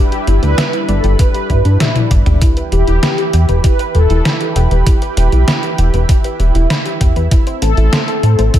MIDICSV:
0, 0, Header, 1, 6, 480
1, 0, Start_track
1, 0, Key_signature, 1, "minor"
1, 0, Tempo, 612245
1, 1894, Time_signature, 4, 2, 24, 8
1, 6737, End_track
2, 0, Start_track
2, 0, Title_t, "Analog polysynth"
2, 0, Program_c, 0, 90
2, 0, Note_on_c, 0, 67, 105
2, 335, Note_on_c, 0, 71, 113
2, 345, Note_off_c, 0, 67, 0
2, 694, Note_on_c, 0, 69, 102
2, 705, Note_off_c, 0, 71, 0
2, 917, Note_off_c, 0, 69, 0
2, 934, Note_on_c, 0, 71, 104
2, 1623, Note_off_c, 0, 71, 0
2, 2135, Note_on_c, 0, 67, 105
2, 2854, Note_on_c, 0, 71, 116
2, 2876, Note_off_c, 0, 67, 0
2, 3093, Note_on_c, 0, 69, 114
2, 3101, Note_off_c, 0, 71, 0
2, 3573, Note_on_c, 0, 67, 104
2, 3588, Note_off_c, 0, 69, 0
2, 5463, Note_off_c, 0, 67, 0
2, 5975, Note_on_c, 0, 69, 110
2, 6696, Note_on_c, 0, 72, 115
2, 6716, Note_off_c, 0, 69, 0
2, 6737, Note_off_c, 0, 72, 0
2, 6737, End_track
3, 0, Start_track
3, 0, Title_t, "Synth arpeggio sound"
3, 0, Program_c, 1, 84
3, 95, Note_on_c, 1, 67, 74
3, 208, Note_off_c, 1, 67, 0
3, 214, Note_on_c, 1, 64, 79
3, 328, Note_off_c, 1, 64, 0
3, 335, Note_on_c, 1, 62, 68
3, 434, Note_off_c, 1, 62, 0
3, 454, Note_on_c, 1, 76, 94
3, 514, Note_off_c, 1, 76, 0
3, 575, Note_on_c, 1, 64, 76
3, 675, Note_off_c, 1, 64, 0
3, 695, Note_on_c, 1, 74, 79
3, 755, Note_off_c, 1, 74, 0
3, 815, Note_on_c, 1, 67, 74
3, 915, Note_off_c, 1, 67, 0
3, 935, Note_on_c, 1, 62, 76
3, 995, Note_off_c, 1, 62, 0
3, 1055, Note_on_c, 1, 67, 79
3, 1169, Note_off_c, 1, 67, 0
3, 1175, Note_on_c, 1, 64, 73
3, 1289, Note_off_c, 1, 64, 0
3, 1294, Note_on_c, 1, 62, 80
3, 1394, Note_off_c, 1, 62, 0
3, 1414, Note_on_c, 1, 76, 101
3, 1474, Note_off_c, 1, 76, 0
3, 1534, Note_on_c, 1, 64, 78
3, 1634, Note_off_c, 1, 64, 0
3, 1654, Note_on_c, 1, 74, 72
3, 1714, Note_off_c, 1, 74, 0
3, 1774, Note_on_c, 1, 67, 71
3, 1874, Note_off_c, 1, 67, 0
3, 1894, Note_on_c, 1, 64, 80
3, 1954, Note_off_c, 1, 64, 0
3, 2015, Note_on_c, 1, 71, 76
3, 2129, Note_off_c, 1, 71, 0
3, 2135, Note_on_c, 1, 67, 77
3, 2249, Note_off_c, 1, 67, 0
3, 2254, Note_on_c, 1, 64, 73
3, 2354, Note_off_c, 1, 64, 0
3, 2374, Note_on_c, 1, 83, 96
3, 2434, Note_off_c, 1, 83, 0
3, 2495, Note_on_c, 1, 67, 75
3, 2594, Note_off_c, 1, 67, 0
3, 2615, Note_on_c, 1, 79, 75
3, 2674, Note_off_c, 1, 79, 0
3, 2735, Note_on_c, 1, 71, 81
3, 2834, Note_off_c, 1, 71, 0
3, 2856, Note_on_c, 1, 64, 83
3, 2915, Note_off_c, 1, 64, 0
3, 2976, Note_on_c, 1, 71, 80
3, 3089, Note_off_c, 1, 71, 0
3, 3095, Note_on_c, 1, 67, 77
3, 3208, Note_off_c, 1, 67, 0
3, 3216, Note_on_c, 1, 64, 77
3, 3315, Note_off_c, 1, 64, 0
3, 3335, Note_on_c, 1, 83, 103
3, 3395, Note_off_c, 1, 83, 0
3, 3455, Note_on_c, 1, 67, 78
3, 3555, Note_off_c, 1, 67, 0
3, 3575, Note_on_c, 1, 79, 75
3, 3635, Note_off_c, 1, 79, 0
3, 3696, Note_on_c, 1, 71, 75
3, 3795, Note_off_c, 1, 71, 0
3, 3815, Note_on_c, 1, 64, 79
3, 3874, Note_off_c, 1, 64, 0
3, 3934, Note_on_c, 1, 71, 74
3, 4048, Note_off_c, 1, 71, 0
3, 4055, Note_on_c, 1, 67, 76
3, 4169, Note_off_c, 1, 67, 0
3, 4175, Note_on_c, 1, 64, 69
3, 4274, Note_off_c, 1, 64, 0
3, 4295, Note_on_c, 1, 83, 97
3, 4355, Note_off_c, 1, 83, 0
3, 4415, Note_on_c, 1, 67, 79
3, 4514, Note_off_c, 1, 67, 0
3, 4535, Note_on_c, 1, 79, 77
3, 4595, Note_off_c, 1, 79, 0
3, 4655, Note_on_c, 1, 71, 76
3, 4755, Note_off_c, 1, 71, 0
3, 4775, Note_on_c, 1, 64, 79
3, 4835, Note_off_c, 1, 64, 0
3, 4896, Note_on_c, 1, 71, 79
3, 5009, Note_off_c, 1, 71, 0
3, 5015, Note_on_c, 1, 67, 76
3, 5129, Note_off_c, 1, 67, 0
3, 5135, Note_on_c, 1, 64, 79
3, 5234, Note_off_c, 1, 64, 0
3, 5255, Note_on_c, 1, 83, 102
3, 5315, Note_off_c, 1, 83, 0
3, 5374, Note_on_c, 1, 67, 80
3, 5474, Note_off_c, 1, 67, 0
3, 5496, Note_on_c, 1, 79, 77
3, 5555, Note_off_c, 1, 79, 0
3, 5615, Note_on_c, 1, 71, 77
3, 5714, Note_off_c, 1, 71, 0
3, 5735, Note_on_c, 1, 64, 80
3, 5794, Note_off_c, 1, 64, 0
3, 5855, Note_on_c, 1, 72, 79
3, 5969, Note_off_c, 1, 72, 0
3, 5975, Note_on_c, 1, 69, 77
3, 6089, Note_off_c, 1, 69, 0
3, 6096, Note_on_c, 1, 64, 74
3, 6195, Note_off_c, 1, 64, 0
3, 6216, Note_on_c, 1, 84, 97
3, 6275, Note_off_c, 1, 84, 0
3, 6335, Note_on_c, 1, 69, 77
3, 6435, Note_off_c, 1, 69, 0
3, 6455, Note_on_c, 1, 81, 72
3, 6514, Note_off_c, 1, 81, 0
3, 6575, Note_on_c, 1, 72, 74
3, 6674, Note_off_c, 1, 72, 0
3, 6695, Note_on_c, 1, 64, 80
3, 6737, Note_off_c, 1, 64, 0
3, 6737, End_track
4, 0, Start_track
4, 0, Title_t, "Analog synth pad"
4, 0, Program_c, 2, 89
4, 0, Note_on_c, 2, 55, 81
4, 0, Note_on_c, 2, 62, 71
4, 0, Note_on_c, 2, 64, 76
4, 0, Note_on_c, 2, 71, 88
4, 1863, Note_off_c, 2, 55, 0
4, 1863, Note_off_c, 2, 62, 0
4, 1863, Note_off_c, 2, 71, 0
4, 1864, Note_off_c, 2, 64, 0
4, 1894, Note_on_c, 2, 52, 75
4, 1894, Note_on_c, 2, 64, 77
4, 1894, Note_on_c, 2, 67, 74
4, 1894, Note_on_c, 2, 71, 90
4, 5703, Note_off_c, 2, 52, 0
4, 5703, Note_off_c, 2, 67, 0
4, 5703, Note_off_c, 2, 71, 0
4, 5734, Note_on_c, 2, 60, 76
4, 5735, Note_on_c, 2, 57, 77
4, 6737, Note_off_c, 2, 57, 0
4, 6737, Note_off_c, 2, 60, 0
4, 6737, Note_off_c, 2, 64, 0
4, 6737, End_track
5, 0, Start_track
5, 0, Title_t, "Analog synth bass"
5, 0, Program_c, 3, 38
5, 215, Note_on_c, 3, 31, 91
5, 310, Note_off_c, 3, 31, 0
5, 335, Note_on_c, 3, 38, 84
5, 429, Note_off_c, 3, 38, 0
5, 694, Note_on_c, 3, 31, 88
5, 789, Note_off_c, 3, 31, 0
5, 815, Note_on_c, 3, 31, 79
5, 909, Note_off_c, 3, 31, 0
5, 1174, Note_on_c, 3, 43, 90
5, 1269, Note_off_c, 3, 43, 0
5, 1294, Note_on_c, 3, 43, 81
5, 1389, Note_off_c, 3, 43, 0
5, 1654, Note_on_c, 3, 31, 88
5, 1749, Note_off_c, 3, 31, 0
5, 1774, Note_on_c, 3, 31, 78
5, 1869, Note_off_c, 3, 31, 0
5, 2133, Note_on_c, 3, 28, 92
5, 2229, Note_off_c, 3, 28, 0
5, 2254, Note_on_c, 3, 28, 80
5, 2349, Note_off_c, 3, 28, 0
5, 2614, Note_on_c, 3, 40, 88
5, 2709, Note_off_c, 3, 40, 0
5, 2734, Note_on_c, 3, 28, 75
5, 2829, Note_off_c, 3, 28, 0
5, 3094, Note_on_c, 3, 28, 90
5, 3189, Note_off_c, 3, 28, 0
5, 3214, Note_on_c, 3, 28, 84
5, 3309, Note_off_c, 3, 28, 0
5, 3572, Note_on_c, 3, 28, 86
5, 3668, Note_off_c, 3, 28, 0
5, 3693, Note_on_c, 3, 28, 76
5, 3789, Note_off_c, 3, 28, 0
5, 4054, Note_on_c, 3, 28, 99
5, 4149, Note_off_c, 3, 28, 0
5, 4174, Note_on_c, 3, 35, 81
5, 4269, Note_off_c, 3, 35, 0
5, 4534, Note_on_c, 3, 28, 90
5, 4629, Note_off_c, 3, 28, 0
5, 4654, Note_on_c, 3, 28, 78
5, 4749, Note_off_c, 3, 28, 0
5, 5014, Note_on_c, 3, 28, 91
5, 5109, Note_off_c, 3, 28, 0
5, 5133, Note_on_c, 3, 28, 80
5, 5229, Note_off_c, 3, 28, 0
5, 5494, Note_on_c, 3, 40, 88
5, 5589, Note_off_c, 3, 40, 0
5, 5614, Note_on_c, 3, 40, 74
5, 5709, Note_off_c, 3, 40, 0
5, 5974, Note_on_c, 3, 33, 95
5, 6069, Note_off_c, 3, 33, 0
5, 6094, Note_on_c, 3, 33, 87
5, 6189, Note_off_c, 3, 33, 0
5, 6455, Note_on_c, 3, 45, 90
5, 6549, Note_off_c, 3, 45, 0
5, 6574, Note_on_c, 3, 33, 75
5, 6669, Note_off_c, 3, 33, 0
5, 6737, End_track
6, 0, Start_track
6, 0, Title_t, "Drums"
6, 95, Note_on_c, 9, 42, 38
6, 174, Note_off_c, 9, 42, 0
6, 215, Note_on_c, 9, 42, 67
6, 293, Note_off_c, 9, 42, 0
6, 335, Note_on_c, 9, 42, 38
6, 414, Note_off_c, 9, 42, 0
6, 454, Note_on_c, 9, 38, 112
6, 454, Note_on_c, 9, 42, 88
6, 533, Note_off_c, 9, 38, 0
6, 533, Note_off_c, 9, 42, 0
6, 575, Note_on_c, 9, 42, 39
6, 653, Note_off_c, 9, 42, 0
6, 694, Note_on_c, 9, 42, 62
6, 773, Note_off_c, 9, 42, 0
6, 814, Note_on_c, 9, 42, 39
6, 893, Note_off_c, 9, 42, 0
6, 934, Note_on_c, 9, 36, 111
6, 934, Note_on_c, 9, 42, 90
6, 1013, Note_off_c, 9, 36, 0
6, 1013, Note_off_c, 9, 42, 0
6, 1054, Note_on_c, 9, 42, 39
6, 1133, Note_off_c, 9, 42, 0
6, 1174, Note_on_c, 9, 36, 56
6, 1174, Note_on_c, 9, 42, 35
6, 1252, Note_off_c, 9, 42, 0
6, 1253, Note_off_c, 9, 36, 0
6, 1294, Note_on_c, 9, 42, 37
6, 1373, Note_off_c, 9, 42, 0
6, 1414, Note_on_c, 9, 38, 105
6, 1414, Note_on_c, 9, 42, 80
6, 1414, Note_on_c, 9, 48, 53
6, 1492, Note_off_c, 9, 38, 0
6, 1492, Note_off_c, 9, 42, 0
6, 1492, Note_off_c, 9, 48, 0
6, 1534, Note_on_c, 9, 42, 37
6, 1534, Note_on_c, 9, 48, 61
6, 1612, Note_off_c, 9, 42, 0
6, 1612, Note_off_c, 9, 48, 0
6, 1653, Note_on_c, 9, 42, 65
6, 1654, Note_on_c, 9, 36, 95
6, 1732, Note_off_c, 9, 36, 0
6, 1732, Note_off_c, 9, 42, 0
6, 1774, Note_on_c, 9, 42, 40
6, 1774, Note_on_c, 9, 45, 84
6, 1852, Note_off_c, 9, 42, 0
6, 1852, Note_off_c, 9, 45, 0
6, 1894, Note_on_c, 9, 36, 114
6, 1894, Note_on_c, 9, 42, 95
6, 1972, Note_off_c, 9, 42, 0
6, 1973, Note_off_c, 9, 36, 0
6, 2013, Note_on_c, 9, 42, 39
6, 2092, Note_off_c, 9, 42, 0
6, 2134, Note_on_c, 9, 42, 67
6, 2212, Note_off_c, 9, 42, 0
6, 2254, Note_on_c, 9, 42, 39
6, 2332, Note_off_c, 9, 42, 0
6, 2374, Note_on_c, 9, 38, 111
6, 2374, Note_on_c, 9, 42, 90
6, 2452, Note_off_c, 9, 38, 0
6, 2452, Note_off_c, 9, 42, 0
6, 2494, Note_on_c, 9, 42, 39
6, 2572, Note_off_c, 9, 42, 0
6, 2614, Note_on_c, 9, 42, 65
6, 2692, Note_off_c, 9, 42, 0
6, 2734, Note_on_c, 9, 42, 42
6, 2812, Note_off_c, 9, 42, 0
6, 2854, Note_on_c, 9, 36, 111
6, 2854, Note_on_c, 9, 42, 89
6, 2932, Note_off_c, 9, 36, 0
6, 2932, Note_off_c, 9, 42, 0
6, 2974, Note_on_c, 9, 42, 41
6, 3052, Note_off_c, 9, 42, 0
6, 3094, Note_on_c, 9, 42, 35
6, 3173, Note_off_c, 9, 42, 0
6, 3215, Note_on_c, 9, 42, 41
6, 3293, Note_off_c, 9, 42, 0
6, 3335, Note_on_c, 9, 38, 113
6, 3335, Note_on_c, 9, 42, 84
6, 3413, Note_off_c, 9, 38, 0
6, 3413, Note_off_c, 9, 42, 0
6, 3454, Note_on_c, 9, 42, 40
6, 3533, Note_off_c, 9, 42, 0
6, 3574, Note_on_c, 9, 42, 65
6, 3653, Note_off_c, 9, 42, 0
6, 3694, Note_on_c, 9, 42, 42
6, 3773, Note_off_c, 9, 42, 0
6, 3814, Note_on_c, 9, 36, 123
6, 3814, Note_on_c, 9, 42, 99
6, 3893, Note_off_c, 9, 36, 0
6, 3893, Note_off_c, 9, 42, 0
6, 3935, Note_on_c, 9, 42, 39
6, 4014, Note_off_c, 9, 42, 0
6, 4055, Note_on_c, 9, 42, 67
6, 4133, Note_off_c, 9, 42, 0
6, 4174, Note_on_c, 9, 42, 39
6, 4252, Note_off_c, 9, 42, 0
6, 4294, Note_on_c, 9, 38, 119
6, 4294, Note_on_c, 9, 42, 89
6, 4373, Note_off_c, 9, 38, 0
6, 4373, Note_off_c, 9, 42, 0
6, 4414, Note_on_c, 9, 42, 39
6, 4492, Note_off_c, 9, 42, 0
6, 4535, Note_on_c, 9, 42, 65
6, 4613, Note_off_c, 9, 42, 0
6, 4655, Note_on_c, 9, 42, 41
6, 4733, Note_off_c, 9, 42, 0
6, 4774, Note_on_c, 9, 36, 119
6, 4775, Note_on_c, 9, 42, 99
6, 4853, Note_off_c, 9, 36, 0
6, 4853, Note_off_c, 9, 42, 0
6, 4895, Note_on_c, 9, 42, 42
6, 4973, Note_off_c, 9, 42, 0
6, 5015, Note_on_c, 9, 42, 37
6, 5093, Note_off_c, 9, 42, 0
6, 5136, Note_on_c, 9, 42, 39
6, 5214, Note_off_c, 9, 42, 0
6, 5255, Note_on_c, 9, 38, 114
6, 5255, Note_on_c, 9, 42, 86
6, 5333, Note_off_c, 9, 38, 0
6, 5333, Note_off_c, 9, 42, 0
6, 5375, Note_on_c, 9, 42, 41
6, 5453, Note_off_c, 9, 42, 0
6, 5494, Note_on_c, 9, 36, 106
6, 5495, Note_on_c, 9, 42, 70
6, 5573, Note_off_c, 9, 36, 0
6, 5573, Note_off_c, 9, 42, 0
6, 5615, Note_on_c, 9, 42, 43
6, 5694, Note_off_c, 9, 42, 0
6, 5734, Note_on_c, 9, 36, 126
6, 5734, Note_on_c, 9, 42, 96
6, 5813, Note_off_c, 9, 36, 0
6, 5813, Note_off_c, 9, 42, 0
6, 5855, Note_on_c, 9, 42, 39
6, 5933, Note_off_c, 9, 42, 0
6, 5974, Note_on_c, 9, 42, 69
6, 6053, Note_off_c, 9, 42, 0
6, 6095, Note_on_c, 9, 42, 38
6, 6173, Note_off_c, 9, 42, 0
6, 6215, Note_on_c, 9, 38, 115
6, 6215, Note_on_c, 9, 42, 88
6, 6293, Note_off_c, 9, 38, 0
6, 6293, Note_off_c, 9, 42, 0
6, 6335, Note_on_c, 9, 42, 39
6, 6413, Note_off_c, 9, 42, 0
6, 6455, Note_on_c, 9, 42, 68
6, 6533, Note_off_c, 9, 42, 0
6, 6575, Note_on_c, 9, 42, 42
6, 6654, Note_off_c, 9, 42, 0
6, 6694, Note_on_c, 9, 36, 116
6, 6695, Note_on_c, 9, 42, 88
6, 6737, Note_off_c, 9, 36, 0
6, 6737, Note_off_c, 9, 42, 0
6, 6737, End_track
0, 0, End_of_file